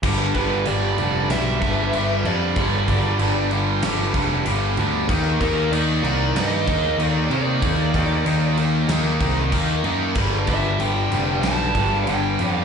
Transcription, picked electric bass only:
0.03 0.32 G1 medium
0.34 0.63 G1 medium
0.67 0.96 G1 medium
0.98 1.27 F1 medium
1.30 1.58 B1 medium
1.62 1.90 G1 medium
1.93 2.22 G1 medium
2.24 2.53 F2 medium
2.56 2.85 G1 medium
2.88 3.16 G1 medium
3.19 3.78 G1 medium
3.83 4.12 G1 loud
4.14 4.43 F1 medium
4.46 4.75 G1 medium
4.77 5.06 D2 medium
5.09 5.38 D#2 medium
5.40 5.69 D#2 loud
5.71 6.01 D#2 loud
6.03 6.32 C2 medium
6.34 6.64 G2 loud
6.67 6.96 D#2 medium
6.98 7.27 D#2 loud
7.30 7.59 C3 medium
7.62 7.91 D#2 medium
7.94 8.23 D#2 medium
8.25 8.85 D#2 medium
8.88 9.18 D#2 medium
9.20 9.49 C2 medium
9.52 9.81 D#2 loud
9.84 10.13 F#2 medium
10.15 10.45 G1 medium
10.47 10.76 G1 medium
10.79 11.08 G1 medium
11.11 11.40 F1 medium
11.42 11.72 B1 medium
11.75 12.04 G1 medium
12.07 12.36 G1 loud
12.39 12.64 F2 medium

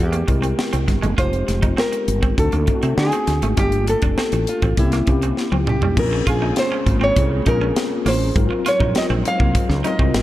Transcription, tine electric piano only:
0.00 0.28 G#3 medium
0.00 0.28 C4 medium
0.00 0.28 E4 medium
0.00 0.29 A#4 medium
0.00 1.19 G5 medium
0.28 1.07 G#3 medium
0.28 1.07 C4 medium
0.28 1.07 E4 medium
0.28 1.07 G4 medium
0.28 1.07 A#4 medium
1.17 2.23 G#3 medium
1.17 2.23 C4 medium
1.17 2.23 D#4 medium
1.17 2.23 F4 medium
1.17 2.24 G4 medium
2.38 2.64 A3 medium
2.38 2.64 C4 medium
2.38 2.64 D4 medium
2.38 2.65 D#4 medium
2.38 2.65 F#4 medium
2.67 3.46 A3 medium
2.67 3.46 C4 medium
2.67 3.47 D4 medium
2.67 3.47 D#4 medium
2.67 2.75 E4 medium
2.75 3.50 F#4 medium
3.57 4.62 A3 medium
3.57 4.63 A#3 medium
3.57 4.63 D4 medium
3.57 4.63 F4 medium
3.57 4.63 G4 medium
4.77 5.03 A#3 medium
4.77 5.03 C4 medium
4.77 5.04 C#4 medium
4.77 5.04 E4 medium
4.77 5.04 G4 medium
5.07 5.86 A#3 medium
5.07 5.86 C4 medium
5.07 5.86 C#4 medium
5.07 5.86 E4 medium
5.07 5.86 G4 medium
5.97 6.36 A#3 medium
5.97 6.36 C4 medium
5.97 6.36 C#4 medium
5.97 6.37 F4 medium
5.97 6.37 G#4 medium
6.42 7.33 G#3 medium
6.42 7.33 A#3 medium
6.42 7.34 C#4 medium
6.42 7.34 F4 medium
6.42 7.34 G#4 medium
7.46 8.24 A#3 medium
7.46 8.25 C4 medium
7.46 8.25 C#4 medium
7.46 8.25 F4 medium
7.46 8.25 G#4 medium
8.35 8.74 F#3 medium
8.35 8.74 C4 medium
8.35 8.75 D#4 medium
8.35 8.75 F4 medium
8.35 8.75 A#4 medium
8.79 9.71 F#3 medium
8.79 9.71 C4 medium
8.79 9.71 D#4 medium
8.79 9.71 F4 medium
8.79 9.71 A#4 medium
9.84 10.22 F#3 medium
9.84 10.22 C4 medium
9.84 10.22 D#4 medium
9.84 10.22 F4 medium
9.84 10.22 A#4 medium

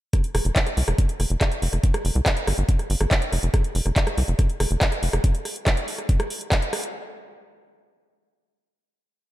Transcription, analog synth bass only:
0.35 0.40 F1 medium
0.45 0.51 F1 medium
0.77 0.83 C2 loud
0.88 0.94 F1 medium
1.20 1.26 F1 medium
1.30 1.36 F1 medium
1.62 1.68 F1 loud
1.73 1.79 F1 medium
2.05 2.11 F1 medium
2.15 2.21 C2 medium
2.47 2.53 G1 medium
2.58 2.64 G1 medium
2.90 2.96 G1 medium
3.01 3.06 G1 medium
3.32 3.38 F1 medium
3.43 3.49 F1 medium
3.75 3.81 F1 medium
3.86 3.92 F1 medium
4.18 4.23 C2 loud
4.28 4.34 F1 medium
4.60 4.66 F1 medium
4.71 4.77 F1 medium
5.03 5.09 F1 medium
5.13 5.19 F1 medium

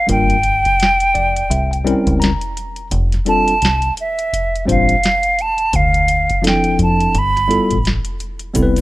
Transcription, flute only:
0.11 2.18 G5 loud
3.29 3.94 A5 loud
4.00 4.65 E5 medium
4.71 5.43 F5 medium
5.41 5.77 A5 loud
5.76 6.45 F5 loud
6.48 6.79 G5 medium
6.83 7.20 A5 medium
7.18 7.87 B5 loud

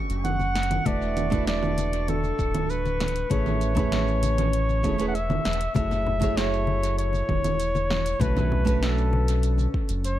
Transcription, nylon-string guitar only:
0.00 0.81 A3 medium
0.00 0.82 C#4 medium
0.00 0.82 D4 medium
0.00 0.83 F#4 medium
0.00 0.84 B4 loud
0.85 1.28 A3 medium
0.85 1.28 D4 medium
0.85 1.28 E4 medium
0.85 1.29 F#4 medium
0.85 1.29 B4 medium
1.30 3.26 A3 medium
1.30 3.27 D4 medium
1.30 3.27 E4 medium
1.30 3.28 F#4 medium
1.34 3.28 B4 loud
3.30 3.73 A3 medium
3.30 3.73 C#4 medium
3.30 3.73 E4 medium
3.30 3.73 G#4 medium
3.30 3.74 B4 medium
3.75 4.80 A3 medium
3.75 4.80 C#4 medium
3.75 4.81 E4 medium
3.75 4.81 G#4 medium
3.79 4.82 B4 loud
4.83 4.95 A3 medium
4.83 4.95 C#4 medium
4.83 4.96 E4 medium
4.83 4.96 G#4 medium
4.83 4.96 C#5 medium
4.98 5.13 A3 medium
4.98 5.13 C#4 medium
4.98 5.14 E4 medium
4.98 5.14 G#4 medium
4.98 5.14 B4 loud
5.74 6.17 A3 medium
5.74 6.18 E4 medium
5.74 6.18 F#4 medium
5.74 6.18 G#4 medium
5.74 6.19 C#5 medium
6.20 8.16 A3 medium
6.20 8.16 E4 medium
6.20 8.17 F#4 medium
6.20 8.17 G#4 medium
6.24 8.18 C#5 loud
8.20 8.63 A3 medium
8.20 8.63 C#4 medium
8.20 8.63 D4 medium
8.20 8.63 F#4 medium
8.20 8.64 B4 medium
8.65 10.19 A3 medium
8.65 10.19 C#4 medium
8.65 10.19 D4 medium
8.65 10.19 F#4 medium
8.69 10.19 B4 loud

